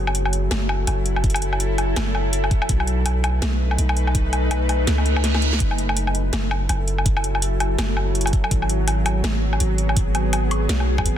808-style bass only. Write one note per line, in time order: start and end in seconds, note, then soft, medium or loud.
0.00 0.50 F#1 medium
0.51 0.86 F#1 medium
0.87 1.95 F#1 loud
1.97 2.50 F#1 medium
2.69 3.41 B1 medium
3.42 3.77 B1 medium
3.78 4.86 B1 loud
4.87 5.59 C#2 medium
5.60 6.32 F#1 medium
6.33 6.68 F#1 loud
6.69 7.77 F#1 medium
7.78 8.32 F#1 loud
8.51 9.23 G#1 medium
9.23 9.59 G#1 loud
9.60 10.68 G#1 loud
10.69 11.04 B1 medium
11.06 11.18 G#1 medium